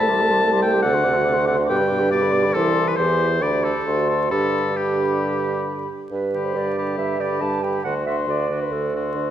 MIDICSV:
0, 0, Header, 1, 6, 480
1, 0, Start_track
1, 0, Key_signature, 1, "major"
1, 0, Tempo, 425230
1, 950, Time_signature, 4, 2, 24, 8
1, 3354, Tempo, 449438
1, 6714, Tempo, 433213
1, 10246, End_track
2, 0, Start_track
2, 0, Title_t, "Flute"
2, 0, Program_c, 0, 73
2, 0, Note_on_c, 0, 81, 53
2, 101, Note_on_c, 0, 84, 58
2, 118, Note_off_c, 0, 81, 0
2, 217, Note_on_c, 0, 81, 54
2, 234, Note_off_c, 0, 84, 0
2, 339, Note_on_c, 0, 84, 59
2, 356, Note_off_c, 0, 81, 0
2, 448, Note_off_c, 0, 84, 0
2, 455, Note_on_c, 0, 81, 72
2, 589, Note_on_c, 0, 84, 59
2, 606, Note_off_c, 0, 81, 0
2, 698, Note_on_c, 0, 81, 61
2, 715, Note_off_c, 0, 84, 0
2, 817, Note_on_c, 0, 84, 63
2, 834, Note_off_c, 0, 81, 0
2, 913, Note_off_c, 0, 84, 0
2, 920, Note_on_c, 0, 86, 59
2, 1050, Note_on_c, 0, 84, 55
2, 1067, Note_off_c, 0, 86, 0
2, 1166, Note_on_c, 0, 86, 54
2, 1183, Note_off_c, 0, 84, 0
2, 1274, Note_on_c, 0, 84, 49
2, 1291, Note_off_c, 0, 86, 0
2, 1389, Note_off_c, 0, 84, 0
2, 1396, Note_on_c, 0, 86, 60
2, 1494, Note_on_c, 0, 84, 53
2, 1511, Note_off_c, 0, 86, 0
2, 1632, Note_on_c, 0, 86, 57
2, 1649, Note_off_c, 0, 84, 0
2, 1738, Note_on_c, 0, 84, 58
2, 1755, Note_off_c, 0, 86, 0
2, 1851, Note_off_c, 0, 84, 0
2, 1858, Note_on_c, 0, 86, 54
2, 1983, Note_on_c, 0, 83, 52
2, 2000, Note_off_c, 0, 86, 0
2, 2115, Note_on_c, 0, 86, 59
2, 2132, Note_off_c, 0, 83, 0
2, 2242, Note_on_c, 0, 83, 57
2, 2259, Note_off_c, 0, 86, 0
2, 2354, Note_off_c, 0, 83, 0
2, 2361, Note_on_c, 0, 86, 62
2, 2491, Note_on_c, 0, 83, 58
2, 2508, Note_off_c, 0, 86, 0
2, 2605, Note_on_c, 0, 86, 53
2, 2622, Note_off_c, 0, 83, 0
2, 2735, Note_on_c, 0, 83, 58
2, 2752, Note_off_c, 0, 86, 0
2, 2857, Note_off_c, 0, 83, 0
2, 2863, Note_on_c, 0, 84, 60
2, 3316, Note_off_c, 0, 84, 0
2, 3358, Note_on_c, 0, 84, 59
2, 3834, Note_on_c, 0, 83, 51
2, 3850, Note_off_c, 0, 84, 0
2, 4281, Note_off_c, 0, 83, 0
2, 4288, Note_on_c, 0, 84, 58
2, 4769, Note_on_c, 0, 83, 53
2, 4785, Note_off_c, 0, 84, 0
2, 5259, Note_off_c, 0, 83, 0
2, 5269, Note_on_c, 0, 83, 53
2, 6455, Note_off_c, 0, 83, 0
2, 6962, Note_on_c, 0, 83, 41
2, 7418, Note_off_c, 0, 83, 0
2, 7424, Note_on_c, 0, 83, 36
2, 7899, Note_off_c, 0, 83, 0
2, 7919, Note_on_c, 0, 83, 37
2, 8377, Note_off_c, 0, 83, 0
2, 8384, Note_on_c, 0, 83, 33
2, 8623, Note_off_c, 0, 83, 0
2, 8637, Note_on_c, 0, 84, 38
2, 8857, Note_off_c, 0, 84, 0
2, 8864, Note_on_c, 0, 84, 44
2, 9340, Note_off_c, 0, 84, 0
2, 9354, Note_on_c, 0, 84, 34
2, 9824, Note_off_c, 0, 84, 0
2, 9834, Note_on_c, 0, 84, 39
2, 10246, Note_off_c, 0, 84, 0
2, 10246, End_track
3, 0, Start_track
3, 0, Title_t, "Clarinet"
3, 0, Program_c, 1, 71
3, 0, Note_on_c, 1, 69, 64
3, 102, Note_on_c, 1, 67, 65
3, 119, Note_off_c, 1, 69, 0
3, 246, Note_on_c, 1, 69, 59
3, 263, Note_off_c, 1, 67, 0
3, 364, Note_on_c, 1, 67, 57
3, 381, Note_off_c, 1, 69, 0
3, 475, Note_off_c, 1, 67, 0
3, 482, Note_on_c, 1, 69, 57
3, 587, Note_on_c, 1, 67, 65
3, 604, Note_off_c, 1, 69, 0
3, 701, Note_on_c, 1, 69, 56
3, 717, Note_off_c, 1, 67, 0
3, 820, Note_on_c, 1, 67, 62
3, 837, Note_off_c, 1, 69, 0
3, 939, Note_off_c, 1, 67, 0
3, 946, Note_on_c, 1, 69, 69
3, 1068, Note_on_c, 1, 66, 56
3, 1085, Note_off_c, 1, 69, 0
3, 1194, Note_on_c, 1, 69, 65
3, 1211, Note_off_c, 1, 66, 0
3, 1317, Note_on_c, 1, 66, 64
3, 1334, Note_off_c, 1, 69, 0
3, 1426, Note_off_c, 1, 66, 0
3, 1433, Note_on_c, 1, 69, 63
3, 1557, Note_on_c, 1, 66, 59
3, 1574, Note_off_c, 1, 69, 0
3, 1667, Note_on_c, 1, 69, 54
3, 1684, Note_off_c, 1, 66, 0
3, 1780, Note_on_c, 1, 66, 52
3, 1797, Note_off_c, 1, 69, 0
3, 1894, Note_off_c, 1, 66, 0
3, 1901, Note_on_c, 1, 67, 64
3, 2040, Note_on_c, 1, 71, 49
3, 2057, Note_off_c, 1, 67, 0
3, 2141, Note_on_c, 1, 67, 58
3, 2158, Note_off_c, 1, 71, 0
3, 2267, Note_on_c, 1, 71, 57
3, 2284, Note_off_c, 1, 67, 0
3, 2388, Note_off_c, 1, 71, 0
3, 2398, Note_on_c, 1, 67, 61
3, 2527, Note_on_c, 1, 71, 54
3, 2544, Note_off_c, 1, 67, 0
3, 2638, Note_on_c, 1, 67, 58
3, 2655, Note_off_c, 1, 71, 0
3, 2777, Note_on_c, 1, 71, 51
3, 2794, Note_off_c, 1, 67, 0
3, 2871, Note_off_c, 1, 71, 0
3, 2877, Note_on_c, 1, 67, 64
3, 3324, Note_off_c, 1, 67, 0
3, 3358, Note_on_c, 1, 67, 64
3, 3692, Note_off_c, 1, 67, 0
3, 3828, Note_on_c, 1, 67, 55
3, 4297, Note_on_c, 1, 66, 52
3, 4313, Note_off_c, 1, 67, 0
3, 4778, Note_off_c, 1, 66, 0
3, 4784, Note_on_c, 1, 67, 50
3, 5257, Note_off_c, 1, 67, 0
3, 5267, Note_on_c, 1, 67, 67
3, 6454, Note_off_c, 1, 67, 0
3, 6717, Note_on_c, 1, 71, 54
3, 7078, Note_on_c, 1, 72, 58
3, 7095, Note_off_c, 1, 71, 0
3, 7206, Note_on_c, 1, 74, 65
3, 7223, Note_off_c, 1, 72, 0
3, 7661, Note_off_c, 1, 74, 0
3, 7667, Note_on_c, 1, 76, 64
3, 7920, Note_on_c, 1, 74, 60
3, 7936, Note_off_c, 1, 76, 0
3, 8146, Note_on_c, 1, 81, 67
3, 8162, Note_off_c, 1, 74, 0
3, 8392, Note_on_c, 1, 79, 52
3, 8408, Note_off_c, 1, 81, 0
3, 8614, Note_off_c, 1, 79, 0
3, 8621, Note_on_c, 1, 78, 61
3, 8732, Note_off_c, 1, 78, 0
3, 8868, Note_on_c, 1, 76, 59
3, 8977, Note_off_c, 1, 76, 0
3, 9117, Note_on_c, 1, 74, 61
3, 9468, Note_off_c, 1, 74, 0
3, 9486, Note_on_c, 1, 71, 52
3, 9597, Note_on_c, 1, 69, 51
3, 9613, Note_off_c, 1, 71, 0
3, 10246, Note_off_c, 1, 69, 0
3, 10246, End_track
4, 0, Start_track
4, 0, Title_t, "Oboe"
4, 0, Program_c, 2, 68
4, 0, Note_on_c, 2, 81, 106
4, 696, Note_off_c, 2, 81, 0
4, 703, Note_on_c, 2, 79, 84
4, 924, Note_off_c, 2, 79, 0
4, 931, Note_on_c, 2, 78, 102
4, 1642, Note_off_c, 2, 78, 0
4, 1664, Note_on_c, 2, 78, 84
4, 1773, Note_off_c, 2, 78, 0
4, 1913, Note_on_c, 2, 79, 91
4, 2377, Note_off_c, 2, 79, 0
4, 2384, Note_on_c, 2, 74, 96
4, 2865, Note_on_c, 2, 69, 93
4, 2882, Note_off_c, 2, 74, 0
4, 3245, Note_on_c, 2, 71, 70
4, 3262, Note_off_c, 2, 69, 0
4, 3348, Note_on_c, 2, 72, 94
4, 3365, Note_off_c, 2, 71, 0
4, 3834, Note_on_c, 2, 74, 88
4, 3850, Note_off_c, 2, 72, 0
4, 4067, Note_on_c, 2, 69, 76
4, 4083, Note_off_c, 2, 74, 0
4, 4539, Note_off_c, 2, 69, 0
4, 4548, Note_on_c, 2, 69, 61
4, 4779, Note_off_c, 2, 69, 0
4, 4785, Note_on_c, 2, 69, 88
4, 5270, Note_on_c, 2, 67, 65
4, 5286, Note_off_c, 2, 69, 0
4, 6239, Note_off_c, 2, 67, 0
4, 6961, Note_on_c, 2, 67, 41
4, 7428, Note_off_c, 2, 67, 0
4, 7456, Note_on_c, 2, 67, 33
4, 7901, Note_off_c, 2, 67, 0
4, 7908, Note_on_c, 2, 67, 37
4, 8378, Note_off_c, 2, 67, 0
4, 8387, Note_on_c, 2, 67, 33
4, 8625, Note_off_c, 2, 67, 0
4, 8637, Note_on_c, 2, 66, 39
4, 8871, Note_off_c, 2, 66, 0
4, 8877, Note_on_c, 2, 66, 38
4, 9347, Note_off_c, 2, 66, 0
4, 9360, Note_on_c, 2, 66, 37
4, 9827, Note_off_c, 2, 66, 0
4, 9863, Note_on_c, 2, 66, 38
4, 10246, Note_off_c, 2, 66, 0
4, 10246, End_track
5, 0, Start_track
5, 0, Title_t, "French horn"
5, 0, Program_c, 3, 60
5, 0, Note_on_c, 3, 57, 69
5, 102, Note_on_c, 3, 55, 57
5, 119, Note_off_c, 3, 57, 0
5, 233, Note_on_c, 3, 57, 62
5, 250, Note_off_c, 3, 55, 0
5, 360, Note_on_c, 3, 55, 57
5, 377, Note_off_c, 3, 57, 0
5, 478, Note_off_c, 3, 55, 0
5, 486, Note_on_c, 3, 57, 66
5, 609, Note_on_c, 3, 55, 54
5, 626, Note_off_c, 3, 57, 0
5, 715, Note_on_c, 3, 57, 56
5, 732, Note_off_c, 3, 55, 0
5, 838, Note_on_c, 3, 55, 57
5, 855, Note_off_c, 3, 57, 0
5, 939, Note_off_c, 3, 55, 0
5, 945, Note_on_c, 3, 48, 69
5, 1064, Note_on_c, 3, 50, 61
5, 1081, Note_off_c, 3, 48, 0
5, 1189, Note_on_c, 3, 48, 59
5, 1206, Note_off_c, 3, 50, 0
5, 1309, Note_on_c, 3, 50, 56
5, 1325, Note_off_c, 3, 48, 0
5, 1427, Note_off_c, 3, 50, 0
5, 1433, Note_on_c, 3, 48, 65
5, 1549, Note_on_c, 3, 50, 53
5, 1566, Note_off_c, 3, 48, 0
5, 1678, Note_on_c, 3, 48, 50
5, 1694, Note_off_c, 3, 50, 0
5, 1796, Note_on_c, 3, 50, 45
5, 1813, Note_off_c, 3, 48, 0
5, 1911, Note_off_c, 3, 50, 0
5, 1919, Note_on_c, 3, 47, 62
5, 2045, Note_on_c, 3, 50, 51
5, 2062, Note_off_c, 3, 47, 0
5, 2167, Note_on_c, 3, 47, 59
5, 2184, Note_off_c, 3, 50, 0
5, 2278, Note_on_c, 3, 50, 55
5, 2295, Note_off_c, 3, 47, 0
5, 2379, Note_off_c, 3, 50, 0
5, 2385, Note_on_c, 3, 47, 63
5, 2511, Note_on_c, 3, 50, 56
5, 2528, Note_off_c, 3, 47, 0
5, 2638, Note_on_c, 3, 47, 57
5, 2655, Note_off_c, 3, 50, 0
5, 2760, Note_on_c, 3, 50, 53
5, 2777, Note_off_c, 3, 47, 0
5, 2877, Note_off_c, 3, 50, 0
5, 2884, Note_on_c, 3, 52, 70
5, 3327, Note_off_c, 3, 52, 0
5, 3361, Note_on_c, 3, 52, 66
5, 3825, Note_on_c, 3, 50, 68
5, 3841, Note_off_c, 3, 52, 0
5, 4156, Note_off_c, 3, 50, 0
5, 4295, Note_on_c, 3, 50, 57
5, 4768, Note_off_c, 3, 50, 0
5, 4778, Note_on_c, 3, 50, 50
5, 5254, Note_off_c, 3, 50, 0
5, 5262, Note_on_c, 3, 50, 60
5, 6452, Note_off_c, 3, 50, 0
5, 6962, Note_on_c, 3, 50, 38
5, 7428, Note_off_c, 3, 50, 0
5, 7444, Note_on_c, 3, 50, 40
5, 7900, Note_off_c, 3, 50, 0
5, 7906, Note_on_c, 3, 50, 39
5, 8377, Note_off_c, 3, 50, 0
5, 8393, Note_on_c, 3, 50, 39
5, 8628, Note_off_c, 3, 50, 0
5, 8636, Note_on_c, 3, 50, 36
5, 8870, Note_off_c, 3, 50, 0
5, 8883, Note_on_c, 3, 50, 36
5, 9350, Note_off_c, 3, 50, 0
5, 9360, Note_on_c, 3, 50, 40
5, 9828, Note_off_c, 3, 50, 0
5, 9838, Note_on_c, 3, 50, 43
5, 10246, Note_off_c, 3, 50, 0
5, 10246, End_track
6, 0, Start_track
6, 0, Title_t, "Bassoon"
6, 0, Program_c, 4, 70
6, 0, Note_on_c, 4, 36, 69
6, 945, Note_on_c, 4, 38, 75
6, 962, Note_off_c, 4, 36, 0
6, 1913, Note_on_c, 4, 43, 72
6, 1930, Note_off_c, 4, 38, 0
6, 2872, Note_off_c, 4, 43, 0
6, 2879, Note_on_c, 4, 36, 69
6, 3325, Note_off_c, 4, 36, 0
6, 3368, Note_on_c, 4, 40, 57
6, 3830, Note_on_c, 4, 38, 58
6, 3846, Note_off_c, 4, 40, 0
6, 4163, Note_off_c, 4, 38, 0
6, 4303, Note_on_c, 4, 38, 64
6, 4784, Note_on_c, 4, 43, 57
6, 4800, Note_off_c, 4, 38, 0
6, 6480, Note_off_c, 4, 43, 0
6, 6708, Note_on_c, 4, 43, 42
6, 7136, Note_off_c, 4, 43, 0
6, 7188, Note_on_c, 4, 43, 47
6, 7615, Note_off_c, 4, 43, 0
6, 7670, Note_on_c, 4, 43, 42
6, 8094, Note_off_c, 4, 43, 0
6, 8147, Note_on_c, 4, 43, 47
6, 8572, Note_off_c, 4, 43, 0
6, 8632, Note_on_c, 4, 38, 43
6, 9057, Note_off_c, 4, 38, 0
6, 9104, Note_on_c, 4, 38, 43
6, 9532, Note_off_c, 4, 38, 0
6, 9595, Note_on_c, 4, 38, 43
6, 10020, Note_off_c, 4, 38, 0
6, 10073, Note_on_c, 4, 38, 50
6, 10246, Note_off_c, 4, 38, 0
6, 10246, End_track
0, 0, End_of_file